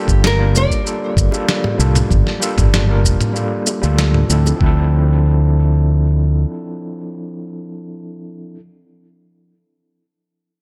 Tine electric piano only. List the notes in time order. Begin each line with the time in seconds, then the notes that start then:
Already playing: G3 A#3 D4 F4 A4
0.37 G3 A#3 D4 F4 A#4
0.84 G3 A#3 D4 F4 A4
1.31 G3 A#3 D4 F4 A4
1.77 G3 A#3 D4 F4 A4
2.40 G3 A#3 D4 F4 A4
2.87 G3 A#3 D4 F4 A#4
3.33 G3 A#3 D4 F4 A4
3.82 G3 A#3 D4 F4 A4
4.28 F3 C4 D4 E4 A4
4.56 F3 C4
4.61 D4 E4
4.66 A4